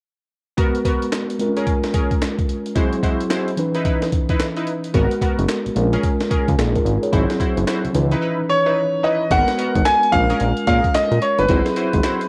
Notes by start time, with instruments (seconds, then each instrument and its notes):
0.57 tine electric piano G#3 B3 F#4 A#4, analog polysynth B3 F#4 A#4, kick, closed hi-hat
0.75 closed hi-hat
0.85 analog polysynth B3 F#4 A#4, kick, closed hi-hat
1.02 closed hi-hat
1.12 snare, clap, closed hi-hat
1.30 closed hi-hat
1.39 tine electric piano G#3 C4 F4 A#4, closed hi-hat
1.46 tine electric piano C#4
1.57 analog polysynth C#4 G#4 A#4, closed hi-hat
1.67 kick, closed hi-hat
1.83 snare, closed hi-hat
1.94 analog polysynth C#4 G#4 A#4, kick, closed hi-hat
2.11 kick, closed hi-hat
2.22 snare, clap, closed hi-hat
2.39 kick, closed hi-hat
2.49 closed hi-hat
2.66 closed hi-hat
2.75 tine electric piano F#3 C4 E4 G#4, analog polysynth G#3 E4 F#4 C5, kick, closed hi-hat
2.93 closed hi-hat
3.03 analog polysynth G#3 E4 F#4 C5, kick, closed hi-hat
3.21 closed hi-hat
3.30 analog polysynth G#3 E4 F#4 C5, snare, clap, closed hi-hat
3.48 closed hi-hat
3.57 tine electric piano E3 C#4 D#4 B4, closed hi-hat
3.74 analog polysynth D#4 E4 B4, closed hi-hat
3.85 analog polysynth D#4 E4 B4, kick, closed hi-hat
4.02 snare, closed hi-hat
4.12 kick, closed hi-hat
4.29 analog polysynth D#4 E4 B4, kick, closed hi-hat
4.40 snare, clap, closed hi-hat
4.57 analog polysynth D#4 E4 B4, closed hi-hat
4.67 closed hi-hat
4.84 closed hi-hat
4.94 analog synth bass G#1, tine electric piano G#3 B3 F#4 A#4, analog polysynth B3 F#4 A#4, kick, closed hi-hat
5.11 closed hi-hat
5.21 analog polysynth B3 F#4 A#4, kick, closed hi-hat
5.39 analog synth bass F#1, closed hi-hat
5.49 snare, clap, closed hi-hat
5.66 analog synth bass A#1, closed hi-hat
5.75 analog synth bass A#1, tine electric piano G#3 C4 F4 A#4, closed hi-hat
5.82 tine electric piano C#4
5.93 analog polysynth C#4 G#4 A#4, closed hi-hat
6.04 kick, closed hi-hat
6.21 snare, closed hi-hat
6.30 analog synth bass C#2, analog polysynth C#4 G#4 A#4, kick, closed hi-hat
6.48 analog synth bass C#2, kick, closed hi-hat
6.58 analog synth bass A#1, tine electric piano D#4 G#4, snare, clap, closed hi-hat
6.76 tine electric piano F4 A#4, kick, closed hi-hat
6.85 analog synth bass G#1, closed hi-hat
7.03 tine electric piano G#4 C#5, closed hi-hat
7.12 analog synth bass G#1, tine electric piano F#3 C4 E4 G#4, analog polysynth E4 F#4 C5, kick, closed hi-hat
7.30 snare, closed hi-hat
7.40 analog polysynth E4 F#4 C5, kick, closed hi-hat
7.57 analog synth bass F#1, closed hi-hat
7.67 analog polysynth E4 F#4 C5, snare, clap, closed hi-hat
7.84 analog synth bass C#2, closed hi-hat
7.93 analog synth bass C#2, tine electric piano D#3 C#4 D#4 B4, closed hi-hat
7.99 tine electric piano E3
8.11 analog polysynth D#4 E4 B4, closed hi-hat
8.21 analog polysynth D#4 E4 B4
8.50 grand piano C#5
8.66 analog polysynth D#4 E4 B4
9.03 analog polysynth D#4 E4 B4, grand piano D#5
9.30 analog synth bass G#1, tine electric piano G#3 A#3 F#4 A#4, analog polysynth B3 F#4 A#4, grand piano F#5, kick, closed hi-hat
9.37 tine electric piano B3
9.48 snare, closed hi-hat
9.58 analog polysynth B3 F#4 A#4, closed hi-hat
9.75 analog synth bass G#1, kick, closed hi-hat
9.85 grand piano G#5, snare, clap, closed hi-hat
10.03 closed hi-hat
10.12 analog synth bass A#1, tine electric piano G#3 C#4 F4 A#4, grand piano F5, kick, closed hi-hat
10.30 analog polysynth C#4 G#4 A#4, closed hi-hat
10.40 analog synth bass A#1, closed hi-hat
10.57 closed hi-hat
10.67 analog synth bass A#2, analog polysynth C#4 G#4 A#4, grand piano F5, kick, closed hi-hat
10.84 kick, closed hi-hat
10.95 grand piano D#5, snare, clap, closed hi-hat
11.11 analog synth bass A#2, closed hi-hat
11.22 grand piano C#5, closed hi-hat
11.38 analog synth bass G1, grand piano B4, closed hi-hat
11.48 analog synth bass G#1, tine electric piano F#3 C4 E4 G#4, analog polysynth E4 F#4 C5, kick, closed hi-hat
11.66 snare, closed hi-hat
11.76 analog polysynth E4 F#4 C5, closed hi-hat
11.93 analog synth bass G#1, kick, closed hi-hat
12.03 analog polysynth E4 F#4 C5, snare, clap, closed hi-hat
12.21 closed hi-hat